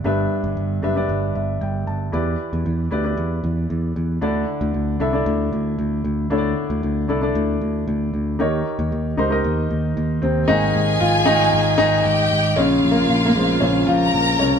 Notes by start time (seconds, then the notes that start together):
Already playing: D4 G4 B4 D5 E5
0.04 G1 G2 D4 G4 B4 E5
0.44 G1
0.57 G1
0.82 F#1 D4 G4 B4 E5
0.96 D4 G4 B4 D5
1.09 G1
1.35 G1 E5
1.61 G1 G5
1.87 G1 A5
2.12 E2 E3 E4 G4 B4 D5
2.53 E2
2.66 E2
2.91 D2 E4 G4 B4 D5
3.04 E4 G4 B4 D5
3.17 E2
3.44 E2
3.70 E2
3.96 E2
4.21 D2 D3 D4 E4 A4 D5
4.61 D2
4.74 D2
5.00 C2 D4 E4 A4 E5
5.13 D4 E4 A4 D5
5.26 D2
5.53 D2
5.79 D2
6.04 D2
6.30 D2 D3 D4 E4 A4 C#5
6.38 D5
6.70 D2
6.83 D2
7.08 C2 D4 E4 A4 D5
7.21 D4 E4 A4 D5
7.35 D2
7.61 D2
7.88 D2
8.14 D2
8.39 D#2 D#3 D#4 G4 A#4 C#5
8.79 D#2
8.92 D#2
9.17 C#2 D#4 G4 A#4 C5
9.30 D#4 G4 A#4 D#5
9.44 D#2
9.71 D#2
9.97 D#2
10.22 D#2 C3 C4
10.48 G#1 C3 D#3 G#3 A#3 D#4 G#4 G#5
10.75 G#1
11.00 G#1 F3 F4
11.26 G#1 D#3 D#4
11.53 G#1
11.78 G#1 D#3 D#4
12.05 G#1 G4 G5
12.31 G#1
12.56 A#1 C#3 C#4 F4 F5
12.83 A#1
12.91 A#2 A#3
13.10 A#1
13.25 A#2 A#3
13.35 A#1 C#3 G#3 C4
13.60 A#1 C#3 C#4
13.87 A#1 F3 F4 A#4 A#5
14.14 A#1
14.39 C2 C#3 C#4